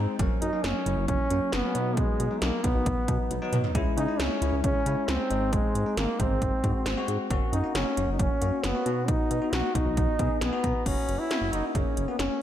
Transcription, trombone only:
0.42 D#4
0.64 C#4
1.08 C#4
1.53 B3
1.97 G#3
2.42 A#3
2.64 B3
3.97 D#4
4.20 C#4
4.64 C#4
5.09 C4
5.53 G#3
5.97 A#3
6.20 C4
7.53 D#4
7.75 C#4
8.12 D#4
8.20 C#4
8.64 B3
9.09 D#4
9.53 F#4
9.75 D#4
10.42 B3
10.86 C#4
11.19 E4
11.53 D#4
11.68 D#4
11.75 C#4
12.08 B3
12.20 C#4

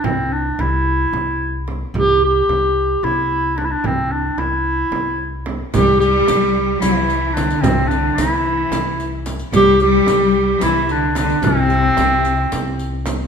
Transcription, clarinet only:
0.04 C4
0.33 D4
0.60 E4
1.97 G4
2.24 G4
3.04 E4
3.57 D4
3.65 E4
3.70 D4
3.86 C4
4.11 D4
4.38 E4
5.74 G4
6.00 G4
6.81 E4
7.33 D4
7.61 C4
7.88 D4
8.15 D#4
8.30 E4
9.56 G4
9.82 G4
10.63 E4
10.91 D4
11.17 D4
11.43 C4

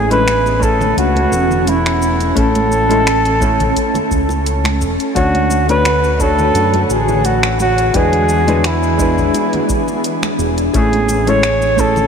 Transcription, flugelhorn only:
0.12 B4
0.63 A4
0.98 F#4
1.69 E4
2.38 A4
5.16 F#4
5.70 B4
6.21 A4
6.84 A4
6.92 G#4
7.26 F#4
7.61 F#4
7.96 G#4
8.66 E4
10.77 G#4
11.29 C#5
11.80 A4

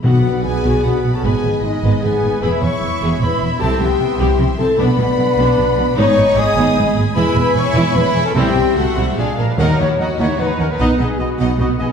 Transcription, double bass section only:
0.04 B1
0.24 B1
0.44 B1
0.64 B1
0.84 B1
1.03 B1
1.24 G#1
1.43 G#1
1.63 G#1
1.83 G#1
2.02 G#1
2.23 G#1
2.41 E1
2.62 E1
2.82 E1
3.02 E1
3.21 E1
3.40 E1
3.61 C2
3.81 C2
4.00 C2
4.20 C2
4.40 C2
4.59 C2
4.78 B1
4.98 B1
5.18 B1
5.36 B1
5.57 B1
5.77 B1
5.96 G#1
6.17 G#1
6.36 G#1
6.55 G#1
6.76 G#1
6.96 G#1
7.16 E1
7.36 E1
7.55 E1
7.75 E1
7.95 E1
8.15 E1
8.35 C2
8.56 C2
8.76 C2
8.97 C2
9.17 A#1
9.38 A#1
9.59 D#2
9.80 D#2
9.99 D#2
10.19 D#2
10.40 D#2
10.59 D#2
10.80 B1
11.00 B1
11.20 B1
11.40 B1
11.60 B1
11.80 B1

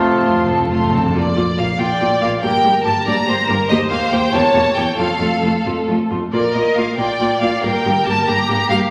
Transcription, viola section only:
0.00 C4
0.24 A3
0.47 C4
0.70 A3
0.92 C4
1.15 A#3 F4
1.36 A#3 F4
1.58 A#3 F4
1.79 A#3 F4
2.00 A#3 F4
2.21 A#3 F4
2.43 A#3 G4
2.64 A#3 G4
2.85 A#3 G4
3.06 A#3 G4
3.28 A#3 G4
3.49 A#3 G4
3.70 A#3 G4
3.91 A#3 G4
4.12 A#3 G4
4.33 A#3 G4
4.55 A#3 G4
4.77 A#3 G4
4.99 A3 F4
5.20 A3 F4
5.43 A3 F4
5.66 A3 F4
5.88 A3 F4
6.10 A3 F4
6.33 A#3 F4
6.55 A#3 F4
6.77 A#3 F4
6.98 A#3 F4
7.20 A#3 F4
7.42 A#3 F4
7.63 A#3 G4
7.84 A#3 G4
8.06 A#3 G4
8.27 A#3 G4
8.49 A#3 G4
8.70 A#3 G4

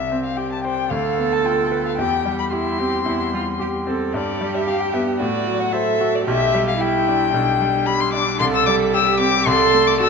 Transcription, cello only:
0.90 A4
1.99 G4
2.52 E4
2.79 G4
3.06 E4
3.35 F4
3.61 G4
3.87 A4
4.13 G4
5.19 F#4
5.72 A4
6.25 G4
6.78 E4
7.33 D4
8.39 A4
8.94 G4
9.48 A4
10.02 A4

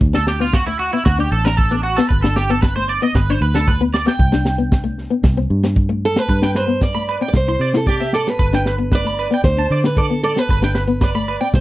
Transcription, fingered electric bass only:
0.01 D2
1.06 D2
1.31 A1
2.10 G1
3.15 G1
3.41 D2
4.19 C2
5.23 C2
5.50 G2
6.29 G2
7.33 C2
7.59 C3
8.39 G1
9.44 D2
9.70 D3
10.49 G1
11.53 C2

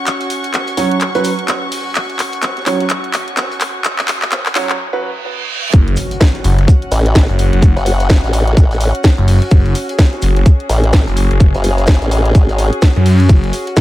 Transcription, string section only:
Already playing: C#4 F#4 F#5 C#6
5.73 C#4
5.91 F#4
6.15 F#5
9.92 G#4
13.70 F#5

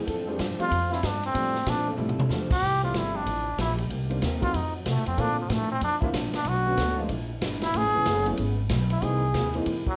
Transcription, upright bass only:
0.07 F2
0.39 G2
0.59 muted upright bass stroke
0.71 F2
1.03 G2
1.35 A2
1.67 A#2
1.98 A2
2.18 muted upright bass stroke
2.29 E2
2.62 C2
2.94 G1
3.26 A1
3.58 A#1
3.90 C2
4.22 D#2
4.54 F2
4.85 C3
4.96 A2
5.07 F2
5.18 A#2
5.49 A2
5.81 F2
6.14 A#1
6.34 muted upright bass stroke
6.45 B1
6.78 D2
7.09 A#1
7.41 G1
7.74 A1
7.85 G#1
7.96 E1
8.05 F#1
8.38 G#1
8.69 B1
9.02 C2
9.34 D#2
9.65 E2
9.86 muted upright bass stroke

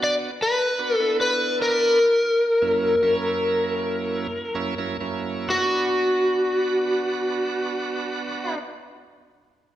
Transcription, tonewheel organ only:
Already playing: B3 D4 F#4
0.79 B3 D4 F#4
1.00 B3 D4 E4
2.62 F#2 A#3 C#4 E4
3.03 F#2 A#3 C#4 E4
4.55 F#2 A#3 C#4 E4
4.78 F#2 A#3 C#4 E4
5.00 F#2 A#3 C#4 E4
5.48 B3 D4 F#4

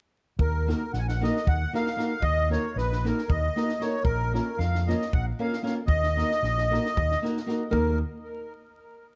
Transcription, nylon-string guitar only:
0.67 A#3 D#4 F#4 A#4
1.21 A#3 D#4 F#4 A#4
1.73 A#3 D#4 F#4 A#4
1.96 A#3 D#4 F#4 A#4
2.49 A#3 D#4 F#4 A#4
3.04 A#3 D#4 F#4 A#4
3.56 A#3 D#4 F#4 A#4
3.79 A#3 D#4 F#4 A#4
4.33 A#3 C#4 F4 A#4
4.87 A#3 C#4 F4 A#4
5.39 A#3 C#4 F4 A#4
5.63 A#3 C#4 F4 A#4
6.16 A#3 D#4 F#4 A#4
6.71 A#3 D#4 F#4 A#4
7.22 A#3 D#4 F#4 A#4
7.46 A#3 D#4 F#4 A#4
7.71 A#3 D#4 F#4 A#4

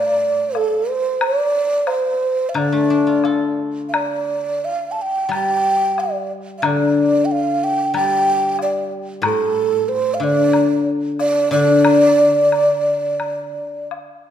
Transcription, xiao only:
Already playing: D5
0.56 A4
0.89 C5
1.23 D5
1.87 C5
2.49 F5
2.58 D5
3.89 F5
3.94 D5
4.65 F5
4.92 A5
5.02 G5
5.34 G5
6.00 D5
6.58 F5
6.65 D5
7.25 G5
7.32 F5
7.64 G5
7.96 G5
8.62 D5
9.25 A4
9.89 C5
10.14 F5
10.24 D5
11.20 D5
11.52 D5

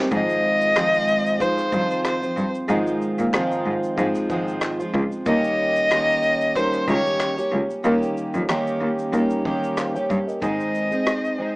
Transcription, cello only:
0.12 G#2
1.73 G2
2.37 G2
2.69 G#2
3.19 A#2
3.65 G#2
3.98 G#2
4.94 C#2
5.26 D#2
6.88 C#2
7.52 C#2
7.84 D#2
8.34 F2
8.81 D#2
9.13 D#2
10.10 G2
10.42 G#2

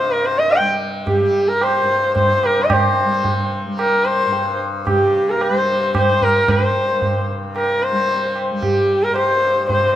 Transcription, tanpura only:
Already playing: G2 C3 G3
0.59 G3
1.21 G3
1.83 G2
2.44 C3
3.05 G3
3.66 G3
4.26 G2
4.88 C3
5.49 G3
6.09 G3
6.70 G2
7.30 C3
7.92 G3
8.51 G3
9.11 G2
9.70 C3

